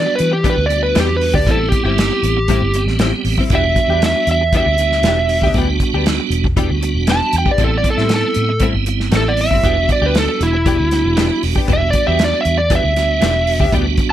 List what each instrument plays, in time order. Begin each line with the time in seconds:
Already playing: tonewheel organ G3 B3 D4 F#4
0.00 electric slide guitar D5
0.06 muted clean electric guitar stroke
0.15 electric slide guitar B4, closed hi-hat
0.20 fingered electric bass E3
0.32 electric slide guitar G4, muted clean electric guitar stroke
0.44 clean electric guitar E3 B3 D4 G4, tonewheel organ G3 B3 D4 F#4, kick, closed hi-hat
0.50 electric slide guitar B4
0.57 fingered electric bass D2, muted clean electric guitar stroke
0.66 tonewheel organ G3 B3 D4 F#4, electric slide guitar D5
0.70 muted clean electric guitar stroke, closed hi-hat
0.83 electric slide guitar B4
0.95 fingered electric bass E2, clean electric guitar E3 B3 D4 G4, snare, closed hi-hat
1.00 electric slide guitar G4
1.09 muted clean electric guitar stroke
1.17 electric slide guitar B4
1.21 open hi-hat
1.34 fingered electric bass D2, clean electric guitar B3 D4 G4, electric slide guitar D5, kick
1.47 fingered electric bass A1, clean electric guitar A2 G3 C4 E4, tonewheel organ G3 B3 C4 E4, kick, closed hi-hat
1.51 electric slide guitar A4
1.60 muted clean electric guitar stroke
1.69 electric slide guitar G4, kick, closed hi-hat
1.73 muted clean electric guitar stroke
1.84 fingered electric bass G1, clean electric guitar C4 E4, electric slide guitar G4
1.89 clean electric guitar G3
1.98 muted clean electric guitar stroke, snare, closed hi-hat
2.12 muted clean electric guitar stroke
2.23 fingered electric bass A1, closed hi-hat
2.37 muted clean electric guitar stroke
2.48 clean electric guitar A2 G3 C4 E4, tonewheel organ G3 B3 C4 E4, kick, closed hi-hat
2.62 fingered electric bass G1
2.74 tonewheel organ G3 B3 C4 G4, muted clean electric guitar stroke, closed hi-hat
2.86 fingered electric bass A1, snare
2.99 clean electric guitar A2 G3 C4 E4, snare, closed hi-hat
3.13 muted clean electric guitar stroke
3.25 fingered electric bass A1, open hi-hat
3.38 clean electric guitar C4 E4, kick
3.42 clean electric guitar G3
3.50 fingered electric bass E1, clean electric guitar E3 B3 D4 G4, tonewheel organ G3 B3 D4 F#4, kick, closed hi-hat
3.55 electric slide guitar E5
3.65 muted clean electric guitar stroke
3.76 muted clean electric guitar stroke, kick, closed hi-hat
3.88 fingered electric bass E2, clean electric guitar D4 G4
3.93 clean electric guitar B3
4.02 electric slide guitar E5, muted clean electric guitar stroke, snare, closed hi-hat
4.16 muted clean electric guitar stroke
4.27 fingered electric bass E2, closed hi-hat
4.31 electric slide guitar E5
4.41 muted clean electric guitar stroke
4.53 clean electric guitar E3 B3 D4 G4, tonewheel organ G3 B3 D4 F#4, kick, closed hi-hat
4.57 electric slide guitar E5
4.66 fingered electric bass D2, muted clean electric guitar stroke
4.78 tonewheel organ G3 B3 D4 F#4, muted clean electric guitar stroke, closed hi-hat
4.92 snare
5.03 fingered electric bass E1, clean electric guitar E3 B3, snare, closed hi-hat
5.07 clean electric guitar D4 G4
5.19 muted clean electric guitar stroke
5.29 open hi-hat
5.42 fingered electric bass D2, clean electric guitar D4 G4, kick
5.47 clean electric guitar B3
5.54 fingered electric bass D2, clean electric guitar E3 B3 D4, tonewheel organ G3 B3 D4 F#4, kick, closed hi-hat
5.58 clean electric guitar G4
5.80 muted clean electric guitar stroke, kick, closed hi-hat
5.94 fingered electric bass D2, clean electric guitar D4 G4
5.98 clean electric guitar B3
6.06 muted clean electric guitar stroke, snare, closed hi-hat
6.20 muted clean electric guitar stroke
6.30 fingered electric bass E1, closed hi-hat
6.44 muted clean electric guitar stroke, kick
6.56 clean electric guitar E3 B3 D4 G4, tonewheel organ G3 B3 D4 F#4, kick, closed hi-hat
6.70 fingered electric bass D2, muted clean electric guitar stroke
6.81 tonewheel organ G3 B3 D4 F#4, muted clean electric guitar stroke, closed hi-hat
6.95 fingered electric bass E1
7.07 clean electric guitar E3 B3 D4 G4, snare, closed hi-hat
7.12 electric slide guitar A5
7.21 muted clean electric guitar stroke
7.33 fingered electric bass E2, closed hi-hat
7.38 electric slide guitar G5
7.46 clean electric guitar B3 D4 G4, kick
7.51 electric slide guitar D5
7.58 fingered electric bass A1, clean electric guitar A2 G3 C4 E4, tonewheel organ G3 B3 C4 E4, kick, closed hi-hat
7.64 electric slide guitar A4
7.72 muted clean electric guitar stroke
7.78 electric slide guitar D5
7.84 muted clean electric guitar stroke, kick, closed hi-hat
7.90 electric slide guitar A4
7.97 fingered electric bass A2, clean electric guitar G3 C4 E4, snare
8.09 muted clean electric guitar stroke, snare, closed hi-hat
8.16 electric slide guitar A4
8.24 muted clean electric guitar stroke
8.34 fingered electric bass A2, closed hi-hat
8.49 muted clean electric guitar stroke
8.60 clean electric guitar A2 G3 C4 E4, tonewheel organ G3 B3 C4 E4, kick, closed hi-hat
8.74 fingered electric bass G1, muted clean electric guitar stroke
8.86 tonewheel organ G3 B3 C4 E4, muted clean electric guitar stroke, closed hi-hat
9.00 snare
9.11 fingered electric bass A1, clean electric guitar A2 G3 C4 E4, snare, closed hi-hat
9.16 electric slide guitar A4
9.26 electric slide guitar D5, muted clean electric guitar stroke
9.37 electric slide guitar E5, open hi-hat
9.50 fingered electric bass G1, clean electric guitar C4 E4, kick
9.55 clean electric guitar G3
9.63 fingered electric bass E1, clean electric guitar E3 B3 D4 G4, tonewheel organ G3 B3 D4 F#4, kick, closed hi-hat
9.77 muted clean electric guitar stroke
9.89 electric slide guitar D5, muted clean electric guitar stroke, kick, closed hi-hat
10.02 fingered electric bass D2, clean electric guitar B3 D4 G4
10.06 electric slide guitar B4
10.14 electric slide guitar A4, muted clean electric guitar stroke, snare, closed hi-hat
10.28 muted clean electric guitar stroke
10.40 fingered electric bass E1, electric slide guitar E4, closed hi-hat
10.53 muted clean electric guitar stroke
10.65 clean electric guitar E3 B3 D4 G4, tonewheel organ G3 B3 D4 F#4, kick, closed hi-hat
10.78 fingered electric bass D2, muted clean electric guitar stroke
10.91 tonewheel organ G3 B3 D4 F#4, muted clean electric guitar stroke, snare, closed hi-hat
11.05 fingered electric bass E1
11.17 clean electric guitar E3 B3 D4 G4, snare, closed hi-hat
11.31 muted clean electric guitar stroke
11.43 fingered electric bass E1, open hi-hat
11.56 clean electric guitar B3 D4 G4, kick
11.67 fingered electric bass E1, clean electric guitar E3 B3 D4 G4, tonewheel organ G3 B3 D4 F#4, kick, closed hi-hat
11.73 electric slide guitar E5
11.81 muted clean electric guitar stroke
11.90 electric slide guitar D5, muted clean electric guitar stroke, kick, closed hi-hat
12.07 fingered electric bass E2, clean electric guitar B3 D4 G4, electric slide guitar E5
12.19 muted clean electric guitar stroke, snare, closed hi-hat
12.24 electric slide guitar D5
12.34 muted clean electric guitar stroke
12.41 electric slide guitar E5
12.45 fingered electric bass E2, closed hi-hat
12.58 electric slide guitar D5, muted clean electric guitar stroke
12.70 clean electric guitar E3 B3 D4 G4, tonewheel organ G3 B3 D4 F#4, kick, closed hi-hat
12.75 electric slide guitar E5
12.84 fingered electric bass D2, muted clean electric guitar stroke
12.96 tonewheel organ G3 B3 D4 F#4, muted clean electric guitar stroke, snare, closed hi-hat
13.21 fingered electric bass E1, clean electric guitar E3 B3 D4 G4, snare, closed hi-hat
13.35 muted clean electric guitar stroke
13.47 open hi-hat
13.59 fingered electric bass D2, clean electric guitar D4 G4, kick
13.64 clean electric guitar B3
13.72 fingered electric bass D2, clean electric guitar E3 B3 D4 G4, tonewheel organ G3 B3 D4 F#4, kick, closed hi-hat
13.86 muted clean electric guitar stroke
13.97 muted clean electric guitar stroke, kick, closed hi-hat